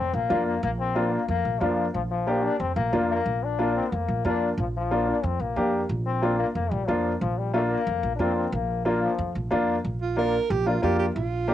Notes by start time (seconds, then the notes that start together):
Already playing: C4
0.13 A#1 A#3
0.29 F2 A#3 D4 F4
0.47 A#3
0.63 A#1 A#3
0.80 C4
0.95 A#3 D4 F4
1.12 A#3
1.28 F2 A#3
1.45 A#1
1.60 F2 F3 A#3 D4 F4
1.94 A#1 F3
2.11 F3
2.27 A#3 D4 G4
2.44 D4
2.60 F2 C4
2.76 A#1 A#3
2.93 F2 A#3 D4 F4
3.09 A#3
3.26 A#1
3.44 D4
3.59 A#3 D4 F4
3.75 C4
3.92 F2 A#3
4.08 A#1
4.25 F2 A#3 D4 F4
4.58 A#1 F3
4.76 F3
4.91 A#3 D4 F4
5.09 D4
5.23 F2 C4
5.40 A#1 A#3
5.56 F2 A#3 D4 G4
5.89 A#1
6.06 C4
6.22 A#3 D4 F4
6.39 A#3
6.55 F2 A#3
6.71 A#1 G3
6.88 F2 F3 A#3 D4 F4
7.21 A#1 F3
7.38 G3
7.53 A3 A#3 D4 F4
7.71 A#3
7.87 F2
8.03 A#1
8.16 F2 A#3 D4
8.20 C4 F4
8.36 C4
8.52 A#1 A#3
8.85 A#3 D4 F4
9.03 F3
9.18 F2
9.35 A#1
9.51 F2 A#3 D4 F4
9.85 A#1
10.02 F4
10.17 A#3 D4 F4 A#4
10.50 A#1 G4
10.66 A#3 D4 F4
10.82 F2 A#3 D4 F4 G4
10.99 G4
11.15 A#1 F4
11.48 A#3 D4 G4